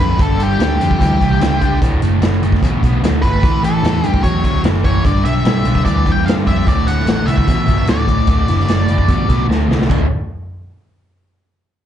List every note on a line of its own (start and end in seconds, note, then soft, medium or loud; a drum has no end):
0.00 0.17 F2 medium
0.00 0.16 G2 medium
0.00 0.17 D3 medium
0.00 0.20 B4 medium
0.19 0.55 G1 medium
0.19 0.37 G2 medium
0.19 0.37 D3 loud
0.19 0.41 A4 medium
0.19 kick loud
0.19 closed hi-hat medium
0.39 0.57 G2 medium
0.39 0.57 D3 medium
0.39 closed hi-hat medium
0.43 1.79 G4 medium
0.60 0.78 D2 medium
0.60 0.78 G2 medium
0.60 0.78 D3 medium
0.60 snare loud
0.60 closed hi-hat medium
0.79 0.98 F2 medium
0.79 0.98 G2 medium
0.79 0.98 D3 medium
0.79 closed hi-hat medium
0.91 kick medium
0.99 1.18 D2 medium
0.99 1.18 G2 medium
0.99 1.18 E3 medium
0.99 kick loud
0.99 closed hi-hat medium
1.20 1.39 C2 medium
1.20 1.39 G2 medium
1.20 1.39 E3 medium
1.20 kick medium
1.20 closed hi-hat medium
1.41 1.76 C#2 medium
1.41 1.59 G2 medium
1.41 1.59 D3 medium
1.41 snare loud
1.41 closed hi-hat loud
1.61 1.79 G2 medium
1.61 1.79 D3 medium
1.61 kick medium
1.61 closed hi-hat medium
1.82 1.99 D1 medium
1.82 2.00 D2 medium
1.82 2.00 A2 medium
1.82 kick loud
1.82 closed hi-hat medium
2.01 2.19 F#1 medium
2.01 2.20 D2 medium
2.01 2.20 A2 medium
2.01 closed hi-hat medium
2.22 2.40 F#1 medium
2.22 2.40 D2 medium
2.22 2.40 A2 medium
2.22 snare loud
2.22 closed hi-hat medium
2.42 2.60 F#1 medium
2.42 2.61 D2 medium
2.42 2.61 A2 medium
2.42 closed hi-hat medium
2.52 kick medium
2.52 snare soft
2.62 2.80 A1 medium
2.62 2.81 D2 medium
2.62 2.81 B2 medium
2.62 kick medium
2.62 closed hi-hat medium
2.83 3.01 B1 medium
2.83 3.02 D2 medium
2.83 3.02 B2 medium
2.83 kick medium
2.83 closed hi-hat medium
3.03 3.21 D2 medium
3.03 3.22 A2 medium
3.03 snare loud
3.03 closed hi-hat medium
3.22 3.41 G1 medium
3.22 3.41 D2 medium
3.22 3.41 A2 medium
3.22 3.64 B4 medium
3.22 kick medium
3.22 closed hi-hat medium
3.43 3.78 A1 medium
3.43 3.62 A2 medium
3.43 3.62 E3 medium
3.43 kick loud
3.43 closed hi-hat medium
3.63 3.82 A2 medium
3.63 3.82 E3 medium
3.63 4.08 A4 medium
3.63 closed hi-hat medium
3.83 4.01 E2 medium
3.83 4.02 A2 medium
3.83 4.02 E3 medium
3.83 snare loud
3.83 closed hi-hat medium
4.03 4.22 G2 medium
4.03 4.22 A2 medium
4.03 4.22 E3 medium
4.03 closed hi-hat medium
4.08 4.21 G4 medium
4.14 kick medium
4.23 4.42 E2 loud
4.23 4.42 A2 medium
4.23 4.42 F#3 medium
4.23 4.61 C#5 medium
4.23 kick medium
4.23 closed hi-hat medium
4.43 4.62 D2 medium
4.43 4.62 A2 medium
4.43 4.63 F#3 medium
4.43 kick medium
4.43 closed hi-hat medium
4.63 4.99 F#1 medium
4.63 4.83 A2 medium
4.63 4.83 E3 medium
4.63 snare loud
4.63 closed hi-hat loud
4.84 5.03 A2 medium
4.84 5.03 E3 medium
4.84 5.04 C#5 medium
4.84 kick medium
4.84 closed hi-hat medium
5.05 5.23 G1 medium
5.05 5.23 G2 medium
5.05 5.24 D3 medium
5.05 5.24 D5 loud
5.05 kick loud
5.05 closed hi-hat medium
5.24 5.43 B1 medium
5.24 5.43 G2 medium
5.24 5.43 D3 medium
5.24 5.82 E5 medium
5.24 closed hi-hat medium
5.45 5.63 B1 medium
5.45 5.63 G2 medium
5.45 5.64 D3 medium
5.45 snare loud
5.45 closed hi-hat medium
5.65 5.83 B1 medium
5.65 5.83 G2 medium
5.65 5.84 D3 medium
5.65 closed hi-hat medium
5.75 kick medium
5.75 snare soft
5.84 6.03 D2 medium
5.84 6.03 G2 medium
5.84 6.04 E3 medium
5.84 6.10 D5 loud
5.84 kick medium
5.84 closed hi-hat medium
6.06 6.24 E2 medium
6.06 6.24 G2 medium
6.06 6.24 E3 medium
6.06 kick medium
6.06 closed hi-hat medium
6.12 6.25 G5 medium
6.25 6.44 G2 medium
6.25 6.44 D3 medium
6.25 6.31 F5 loud
6.25 closed hi-hat medium
6.29 snare loud
6.45 6.64 F2 medium
6.45 6.64 G2 medium
6.45 6.64 D3 medium
6.45 6.68 E5 medium
6.45 kick medium
6.45 closed hi-hat medium
6.67 7.02 D1 medium
6.67 6.85 D2 medium
6.67 6.85 A2 medium
6.67 6.86 D5 loud
6.67 kick loud
6.67 closed hi-hat medium
6.87 7.06 D2 medium
6.87 7.05 A2 medium
6.87 7.28 F#5 medium
6.87 closed hi-hat medium
7.00 snare soft
7.06 7.24 A1 medium
7.06 7.26 D2 medium
7.06 7.26 A2 medium
7.06 snare loud
7.06 closed hi-hat medium
7.26 7.44 C2 medium
7.26 7.46 D2 medium
7.26 7.46 A2 medium
7.26 7.89 E5 loud
7.26 closed hi-hat medium
7.38 kick medium
7.47 7.65 A1 medium
7.47 7.66 D2 medium
7.47 7.66 B2 medium
7.47 kick medium
7.47 closed hi-hat medium
7.68 7.85 G1 medium
7.68 7.86 D2 medium
7.68 7.86 B2 medium
7.68 kick medium
7.68 closed hi-hat medium
7.87 8.23 D1 medium
7.87 8.06 D2 medium
7.87 8.06 A2 medium
7.87 9.46 D5 medium
7.87 snare loud
7.87 closed hi-hat loud
8.08 8.26 D2 medium
8.08 8.26 A2 medium
8.08 kick medium
8.08 closed hi-hat medium
8.27 8.46 D1 medium
8.27 8.46 D2 medium
8.27 8.46 A2 medium
8.27 kick loud
8.27 closed hi-hat medium
8.48 8.66 F#1 medium
8.48 8.67 D2 medium
8.48 8.67 A2 medium
8.48 closed hi-hat medium
8.60 snare soft
8.68 8.86 F#1 medium
8.68 8.87 D2 medium
8.68 8.87 A2 medium
8.68 snare loud
8.68 closed hi-hat medium
8.88 9.06 F#1 medium
8.88 9.07 D2 medium
8.88 9.07 A2 medium
8.88 closed hi-hat medium
8.98 kick medium
9.08 9.26 A1 medium
9.08 9.27 D2 medium
9.08 9.27 B2 medium
9.08 kick medium
9.08 closed hi-hat medium
9.29 9.46 B1 medium
9.29 9.47 D2 medium
9.29 9.47 B2 medium
9.29 kick medium
9.29 closed hi-hat medium
9.48 9.66 D2 medium
9.48 9.67 D2 medium
9.48 9.67 A2 medium
9.48 snare medium
9.69 9.86 C2 medium
9.69 9.87 D2 medium
9.69 9.87 A2 medium
9.69 snare medium
9.81 snare medium
9.88 10.08 D1 medium
9.88 10.05 D2 loud
9.88 10.05 A2 loud
9.88 10.06 D3 loud
9.88 kick medium
9.88 floor tom loud
9.88 crash medium